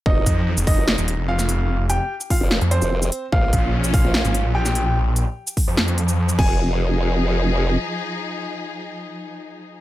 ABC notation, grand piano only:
X:1
M:4/4
L:1/8
Q:1/4=147
K:Fm
V:1 name="Grand piano"
[Ee]3 [Ee]3 [Ff]2- | [Ff] [Gg] z [Ff] z [Cc]3 | [Ff]3 [Ff]3 [Gg]2 | z6 z a- |
a8- | a8 |]